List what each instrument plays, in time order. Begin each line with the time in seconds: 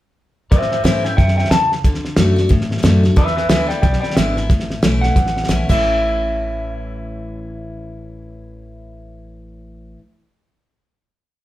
0.51 upright bass A2, steel-string acoustic guitar A2, clean electric guitar C5 E5, kick, snare
0.62 snare
0.71 clean electric guitar C5 E5, snare
0.84 upright bass G#2, steel-string acoustic guitar E3 A3 C#4 E4, clean electric guitar C5 E5, snare, hi-hat pedal
1.04 steel-string acoustic guitar C#4 E4, clean electric guitar E5 G5, snare
1.16 upright bass F#2, steel-string acoustic guitar B2, clean electric guitar E5 G5, kick, snare
1.28 snare
1.37 clean electric guitar E5 G5, snare
1.45 snare
1.51 upright bass E2, steel-string acoustic guitar C#3, clean electric guitar A5, snare, hi-hat pedal
1.72 snare
1.84 upright bass D2, steel-string acoustic guitar D3, kick, snare
1.94 snare
2.05 snare
2.16 upright bass F#2, steel-string acoustic guitar D3 A3 D4 F#4, snare, hi-hat pedal
2.36 steel-string acoustic guitar D4 F#4, snare
2.49 upright bass G#2, steel-string acoustic guitar A2, kick, snare
2.61 snare
2.71 snare
2.77 snare
2.83 upright bass F#2, steel-string acoustic guitar D3 A3 D4 F#4, snare, hi-hat pedal
3.03 steel-string acoustic guitar F#4, snare
3.16 steel-string acoustic guitar E2, upright bass E2, clean electric guitar B4 E5, kick, snare
3.27 snare
3.36 clean electric guitar B4 E5, snare
3.48 upright bass D2, steel-string acoustic guitar D3 G#3 B3 E4, clean electric guitar B4 E5, snare, hi-hat pedal
3.67 steel-string acoustic guitar E4, clean electric guitar D5 G5, snare
3.72 steel-string acoustic guitar B3
3.82 upright bass B1, steel-string acoustic guitar B2, clean electric guitar D5 G5, kick, snare
3.93 snare
4.00 clean electric guitar D5 G5, snare
4.10 snare
4.15 upright bass G#1, steel-string acoustic guitar D3 G#3, clean electric guitar E5, snare, hi-hat pedal
4.19 steel-string acoustic guitar B3 E4
4.37 steel-string acoustic guitar B3 E4, snare
4.50 upright bass A1, steel-string acoustic guitar A2, kick, snare
4.60 snare
4.70 snare
4.82 upright bass B1, steel-string acoustic guitar E3 A3 C#4 E4, snare, hi-hat pedal
5.01 clean electric guitar F#5, snare
5.16 upright bass A1, steel-string acoustic guitar E2, kick, snare
5.26 snare
5.37 snare
5.44 snare
5.48 upright bass A#1, steel-string acoustic guitar E3 A3 C#4 E4, snare, hi-hat pedal
5.69 upright bass A1, steel-string acoustic guitar A2 E3 A3 C#4 E4, clean electric guitar E5, kick, crash